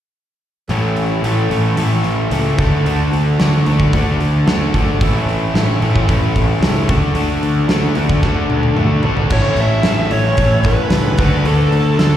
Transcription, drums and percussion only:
0.69 open hi-hat soft
0.96 open hi-hat soft
1.24 open hi-hat medium
1.51 open hi-hat soft
1.77 open hi-hat medium
2.04 open hi-hat soft
2.31 open hi-hat medium
2.59 kick loud
2.59 open hi-hat soft
2.86 open hi-hat medium
3.13 open hi-hat soft
3.40 snare medium
3.40 open hi-hat medium
3.66 open hi-hat soft
3.80 kick medium
3.93 kick medium
3.93 open hi-hat medium
4.20 open hi-hat soft
4.47 snare loud
4.47 open hi-hat medium
4.74 kick medium
4.74 open hi-hat soft
5.01 kick medium
5.01 open hi-hat medium
5.29 open hi-hat soft
5.55 snare medium
5.55 open hi-hat medium
5.82 open hi-hat soft
5.96 kick medium
6.09 kick medium
6.09 open hi-hat medium
6.36 kick medium
6.36 open hi-hat soft
6.63 snare loud
6.63 open hi-hat medium
6.89 kick loud
6.89 open hi-hat soft
7.15 open hi-hat medium
7.43 open hi-hat soft
7.69 snare loud
7.69 open hi-hat medium
7.95 open hi-hat soft
8.09 kick medium
8.23 kick medium
8.23 snare soft
8.50 high tom medium
8.63 high tom medium
8.77 mid tom medium
9.03 floor tom medium
9.17 floor tom medium
9.30 kick loud
9.30 crash medium
9.57 open hi-hat soft
9.83 snare loud
9.83 open hi-hat medium
10.11 open hi-hat soft
10.37 kick medium
10.37 open hi-hat medium
10.64 kick medium
10.64 open hi-hat medium
10.90 snare loud
10.90 open hi-hat medium
11.18 kick loud
11.18 open hi-hat medium
11.45 open hi-hat medium
11.72 open hi-hat soft
11.99 snare medium
11.99 open hi-hat medium

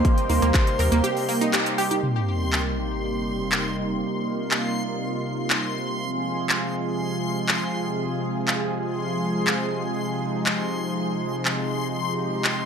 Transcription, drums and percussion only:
0.05 kick loud
0.05 closed hi-hat medium
0.18 closed hi-hat soft
0.29 open hi-hat loud
0.29 high conga loud
0.42 closed hi-hat medium
0.42 low conga medium
0.54 kick loud
0.54 clap loud
0.54 closed hi-hat medium
0.67 closed hi-hat soft
0.79 clap soft
0.79 open hi-hat loud
0.92 closed hi-hat medium
1.04 closed hi-hat medium
1.17 open hi-hat medium
1.29 open hi-hat loud
1.41 closed hi-hat medium
1.53 clap loud
1.53 closed hi-hat medium
1.66 closed hi-hat soft
1.78 open hi-hat loud
1.91 closed hi-hat medium
1.91 high conga medium
2.53 clap loud
3.52 clap loud
4.51 clap loud
5.50 clap loud
6.49 clap loud
7.49 clap loud
8.48 clap loud
9.47 clap loud
10.46 clap loud
11.45 clap loud
12.45 clap loud

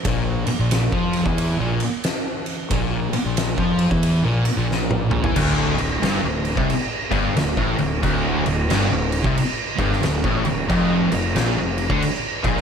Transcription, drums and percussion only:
0.05 kick loud
0.05 ride medium
0.47 ride medium
0.71 snare loud
0.71 ride loud
0.92 kick loud
1.13 snare soft
1.13 ride medium
1.26 kick loud
1.38 ride medium
1.80 ride medium
2.04 snare loud
2.04 ride medium
2.46 ride medium
2.71 kick loud
2.71 ride medium
3.13 ride medium
3.37 snare loud
3.37 ride loud
3.58 kick loud
3.79 ride medium
3.91 kick loud
4.03 ride loud
4.45 ride medium
4.71 snare medium
4.91 high tom medium
5.11 mid tom medium
5.24 floor tom medium
5.36 kick loud
5.36 crash loud
5.36 crash medium
5.78 crash medium
6.03 snare loud
6.03 crash medium
6.45 crash medium
6.57 kick loud
6.70 crash medium
7.12 kick loud
7.12 crash medium
7.37 snare loud
7.37 crash medium
7.57 kick loud
7.78 crash medium
8.03 kick loud
8.03 crash medium
8.46 crash medium
8.70 snare loud
8.70 crash medium
9.12 crash medium
9.24 kick loud
9.38 crash medium
9.78 kick loud
9.78 crash medium
9.93 snare soft
10.03 snare loud
10.03 crash medium
10.24 kick loud
10.45 crash medium
10.70 kick loud
10.70 crash medium
11.12 crash medium
11.36 snare loud
11.36 crash medium
11.78 crash medium
11.90 kick loud
12.02 crash medium
12.44 kick loud
12.44 crash medium
12.57 snare soft

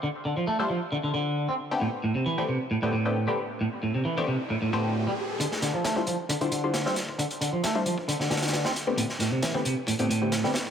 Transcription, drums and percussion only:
5.40 kick loud
5.40 closed hi-hat medium
5.51 snare soft
5.62 snare soft
5.62 closed hi-hat medium
5.84 snare loud
5.84 closed hi-hat medium
5.96 kick medium
6.07 closed hi-hat medium
6.29 kick loud
6.29 closed hi-hat medium
6.41 closed hi-hat soft
6.52 closed hi-hat medium
6.74 snare loud
6.74 closed hi-hat medium
6.86 snare medium
6.96 snare soft
6.96 closed hi-hat medium
7.09 kick medium
7.19 kick loud
7.19 closed hi-hat medium
7.31 closed hi-hat soft
7.41 closed hi-hat medium
7.64 snare loud
7.64 closed hi-hat medium
7.75 kick medium
7.86 closed hi-hat medium
7.98 kick medium
8.09 closed hi-hat medium
8.20 snare soft
8.30 snare medium
8.30 closed hi-hat medium
8.36 snare medium
8.36 closed hi-hat medium
8.42 snare medium
8.42 closed hi-hat medium
8.48 snare medium
8.48 closed hi-hat medium
8.53 snare loud
8.53 closed hi-hat medium
8.65 snare loud
8.76 snare soft
8.76 closed hi-hat medium
8.98 kick loud
8.98 closed hi-hat medium
9.09 snare soft
9.20 snare soft
9.20 closed hi-hat medium
9.43 snare loud
9.43 closed hi-hat medium
9.54 kick medium
9.65 closed hi-hat medium
9.87 kick loud
9.87 closed hi-hat medium
9.99 closed hi-hat soft
10.11 closed hi-hat medium
10.32 snare loud
10.32 closed hi-hat medium
10.44 snare soft
10.54 snare loud
10.54 closed hi-hat medium
10.67 kick medium

